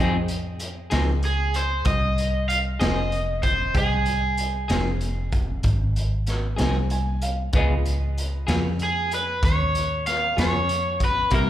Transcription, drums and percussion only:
0.28 closed hi-hat medium
0.59 closed hi-hat medium
0.91 snare medium
0.91 closed hi-hat medium
1.23 closed hi-hat soft
1.54 closed hi-hat soft
1.85 kick loud
1.85 closed hi-hat medium
2.18 closed hi-hat soft
2.49 closed hi-hat soft
2.80 snare loud
2.80 closed hi-hat medium
3.12 closed hi-hat soft
3.43 kick medium
3.43 closed hi-hat medium
3.75 kick loud
3.75 closed hi-hat medium
4.06 closed hi-hat medium
4.37 closed hi-hat medium
4.69 snare medium
4.69 closed hi-hat medium
5.01 closed hi-hat medium
5.32 kick medium
5.32 closed hi-hat medium
5.63 kick loud
5.63 closed hi-hat medium
5.96 closed hi-hat medium
6.27 snare soft
6.27 closed hi-hat soft
6.58 snare medium
6.58 closed hi-hat medium
6.90 closed hi-hat medium
7.22 closed hi-hat medium
7.53 kick loud
7.53 closed hi-hat medium
7.85 closed hi-hat soft
8.18 closed hi-hat soft
8.48 snare medium
8.48 closed hi-hat medium
8.79 closed hi-hat soft
9.11 closed hi-hat medium
9.43 kick loud
9.43 closed hi-hat medium
9.75 closed hi-hat medium
10.06 snare soft
10.06 closed hi-hat medium
10.38 snare medium
10.38 closed hi-hat medium
10.69 closed hi-hat medium
11.00 kick medium
11.00 closed hi-hat medium
11.30 kick medium
11.30 closed hi-hat medium

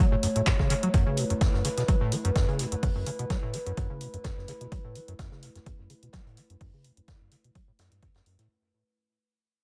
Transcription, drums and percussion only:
0.23 closed hi-hat medium
0.23 open hi-hat loud
0.36 closed hi-hat medium
0.46 kick loud
0.46 snare loud
0.46 clap loud
0.46 closed hi-hat medium
0.46 closed hi-hat soft
0.59 kick medium
0.59 snare soft
0.70 closed hi-hat medium
0.70 open hi-hat medium
0.83 closed hi-hat medium
0.94 kick loud
0.94 closed hi-hat medium
0.94 closed hi-hat soft
1.17 closed hi-hat medium
1.17 open hi-hat loud
1.30 closed hi-hat medium
1.41 kick loud
1.41 snare loud
1.41 closed hi-hat medium
1.41 closed hi-hat soft
1.54 snare soft
1.65 closed hi-hat medium
1.65 open hi-hat medium
1.78 snare soft
1.78 closed hi-hat medium
1.88 kick loud
1.88 closed hi-hat soft
1.88 closed hi-hat medium
2.12 closed hi-hat medium
2.12 open hi-hat loud
2.25 closed hi-hat medium
2.36 kick loud
2.36 snare loud
2.36 closed hi-hat medium
2.36 closed hi-hat soft
2.48 closed hi-hat soft
2.59 closed hi-hat medium
2.59 open hi-hat medium
2.72 closed hi-hat medium
2.83 kick loud
2.83 closed hi-hat soft
2.83 open hi-hat medium
3.06 closed hi-hat medium
3.06 open hi-hat loud
3.19 closed hi-hat medium
3.30 kick loud
3.30 snare loud
3.30 closed hi-hat soft
3.30 closed hi-hat medium
3.53 closed hi-hat medium
3.53 open hi-hat medium
3.67 closed hi-hat medium
3.77 kick loud
3.77 closed hi-hat medium
4.01 closed hi-hat medium
4.01 open hi-hat medium
4.14 closed hi-hat medium
4.24 kick loud
4.24 snare loud
4.24 closed hi-hat medium
4.38 snare soft
4.48 closed hi-hat medium
4.48 open hi-hat medium
4.61 closed hi-hat medium
4.72 kick loud
4.72 closed hi-hat medium
4.95 closed hi-hat medium
4.95 open hi-hat medium
5.08 closed hi-hat medium
5.19 kick loud
5.19 snare loud
5.19 closed hi-hat medium
5.32 snare soft
5.43 closed hi-hat medium
5.43 open hi-hat medium
5.55 snare soft
5.55 closed hi-hat medium
5.66 kick loud
5.66 closed hi-hat medium
5.90 closed hi-hat medium
5.90 open hi-hat medium
6.03 closed hi-hat medium
6.13 kick loud
6.13 snare loud
6.13 closed hi-hat medium
6.27 closed hi-hat soft
6.37 closed hi-hat medium
6.37 open hi-hat medium
6.50 closed hi-hat medium
6.61 kick loud
6.61 closed hi-hat medium
6.61 open hi-hat medium
6.84 closed hi-hat medium
6.84 open hi-hat loud
6.97 closed hi-hat medium
7.08 kick loud
7.08 snare loud
7.08 closed hi-hat medium
7.32 closed hi-hat medium
7.32 open hi-hat medium
7.44 closed hi-hat medium
7.55 kick loud
7.55 closed hi-hat medium
7.79 snare loud
7.79 closed hi-hat medium
7.79 open hi-hat medium
7.92 closed hi-hat medium
7.92 closed hi-hat soft
8.02 kick loud
8.02 closed hi-hat medium
8.14 snare medium
8.14 closed hi-hat medium
8.26 closed hi-hat soft
8.26 open hi-hat medium
8.39 closed hi-hat medium

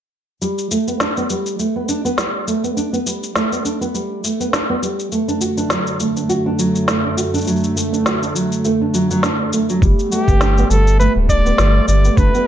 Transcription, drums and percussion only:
0.42 shaker soft
0.58 shaker soft
0.71 shaker medium
0.88 shaker soft
1.00 snare medium
1.00 shaker soft
1.17 shaker soft
1.30 shaker medium
1.46 shaker soft
1.59 shaker soft
1.89 shaker medium
2.06 shaker soft
2.18 snare medium
2.18 shaker soft
2.48 shaker medium
2.64 shaker soft
2.77 shaker soft
2.94 shaker soft
3.07 shaker medium
3.23 shaker soft
3.36 snare medium
3.36 shaker soft
3.53 shaker soft
3.65 shaker medium
3.82 shaker soft
3.95 shaker soft
4.24 shaker medium
4.41 shaker soft
4.53 snare medium
4.53 shaker soft
4.83 shaker medium
4.99 shaker soft
5.12 shaker soft
5.29 shaker soft
5.41 shaker medium
5.58 shaker soft
5.70 snare medium
5.70 shaker soft
5.87 shaker soft
6.00 shaker medium
6.17 shaker soft
6.30 shaker soft
6.59 shaker medium
6.75 shaker soft
6.88 snare medium
6.88 shaker soft
7.18 shaker medium
7.34 shaker soft
7.38 shaker soft
7.41 shaker soft
7.44 shaker soft
7.48 shaker soft
7.56 shaker soft
7.60 shaker soft
7.64 shaker soft
7.77 shaker medium
7.94 shaker soft
8.06 snare medium
8.06 shaker soft
8.23 shaker soft
8.36 shaker medium
8.52 shaker soft
8.65 shaker soft
8.94 shaker medium
9.11 shaker soft
9.23 snare medium
9.23 shaker soft
9.53 shaker medium
9.69 shaker soft
9.82 kick loud
9.82 shaker soft
9.99 shaker soft
10.12 shaker medium
10.28 kick medium
10.28 shaker soft
10.41 snare medium
10.41 shaker soft
10.58 shaker soft
10.71 shaker medium
10.87 shaker soft
11.00 shaker soft
11.29 kick medium
11.29 shaker medium
11.46 shaker soft
11.58 snare medium
11.58 shaker soft
11.88 shaker medium
12.05 shaker soft
12.17 kick loud
12.17 shaker soft
12.35 shaker soft

